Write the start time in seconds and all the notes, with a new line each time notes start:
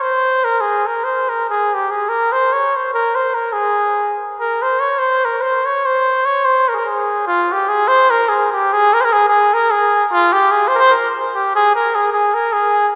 0.02 C5
0.44 A#4
0.61 G#4
0.87 A#4
1.04 C5
1.29 A#4
1.49 G#4
1.74 G4
1.91 G#4
2.09 A#4
2.32 C5
2.53 C#5
2.76 C5
2.94 A#4
3.15 C5
3.34 A#4
3.53 G#4
4.39 A#4
4.63 C5
4.80 C#5
4.99 C5
5.25 A#4
5.41 C5
5.65 C#5
5.86 C5
6.25 C#5
6.45 C5
6.69 A#4
6.74 G#4 A#4
6.85 G#4
7.27 F4
7.52 G4
7.68 G#4
7.88 C5
8.10 A#4
8.29 G#4
8.53 G4
8.73 G#4
8.93 A#4
9.01 C5
9.05 A#4
9.13 G#4
9.28 G#4
9.53 A#4
9.71 G#4
10.11 F4
10.32 G4
10.51 G#4
10.68 C5
10.75 A#4 C5
10.90 A#4
11.09 A#4
11.35 G4
11.55 G#4
11.76 A#4
11.95 G#4
12.13 G#4
12.34 A#4
12.53 G#4